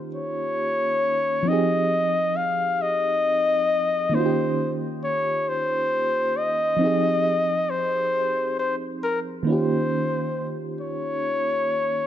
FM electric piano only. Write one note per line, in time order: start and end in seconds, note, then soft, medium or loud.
0.00 1.40 D#3 medium
0.00 1.41 A#3 medium
0.00 1.43 C#4 medium
0.00 1.42 D#4 soft
0.00 1.44 F4 medium
0.00 1.45 G4 medium
1.43 4.07 F3 medium
1.43 4.08 C4 soft
1.48 4.09 D#4 medium
1.48 4.11 G4 medium
1.53 4.12 G#4 medium
4.09 6.74 D#3 medium
4.09 6.75 A#3 soft
4.13 6.77 C#4 medium
4.13 6.76 D#4 medium
4.13 6.77 F4 medium
4.19 4.22 F#4 soft
4.25 6.82 G4 medium
6.77 9.41 F3 medium
6.77 9.42 C4 medium
6.81 9.43 D#4 medium
6.81 9.44 G4 medium
6.86 9.45 G#4 medium
9.43 12.07 D#3 medium
9.43 12.07 A#3 medium
9.43 12.07 D#4 medium
9.49 12.07 C#4 medium
9.49 12.07 F4 soft
9.49 12.07 G4 medium